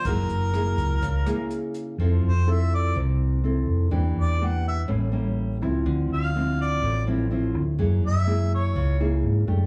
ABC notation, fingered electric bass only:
X:1
M:4/4
L:1/8
Q:1/4=124
K:F
V:1 name="Fingered electric bass" clef=bass
_G,,, G,,,2 _D,, D,, z3 | F,, F,,3 C,,3 F,, | E,, E,,3 A,,,3 ^C,, | D,, D,,3 A,,,3 D,, |
_G,, G,,3 _D,,2 _A,, G,, |]